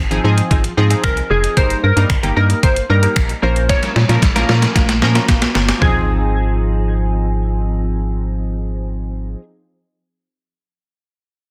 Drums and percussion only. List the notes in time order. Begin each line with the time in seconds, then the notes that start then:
0.11 closed hi-hat
0.38 closed hi-hat
0.51 kick, closed hi-hat
0.64 closed hi-hat
0.90 closed hi-hat
1.04 finger snap, kick, closed hi-hat
1.17 closed hi-hat
1.44 closed hi-hat
1.57 kick, closed hi-hat
1.70 closed hi-hat
1.97 closed hi-hat
2.10 finger snap, kick, closed hi-hat
2.23 closed hi-hat
2.50 closed hi-hat
2.63 kick, closed hi-hat
2.76 closed hi-hat
3.03 closed hi-hat
3.16 finger snap, kick, closed hi-hat
3.29 closed hi-hat
3.56 closed hi-hat
3.69 kick, snare, closed hi-hat
3.83 snare, closed hi-hat
3.96 snare
4.09 snare, closed hi-hat
4.22 kick, snare, closed hi-hat
4.36 snare, closed hi-hat
4.49 snare
4.62 snare, closed hi-hat
4.76 kick, snare, closed hi-hat
4.89 snare, closed hi-hat
5.02 snare
5.15 snare, closed hi-hat
5.28 kick, snare, closed hi-hat
5.42 snare, closed hi-hat
5.55 snare
5.69 snare, closed hi-hat
5.82 kick, floor tom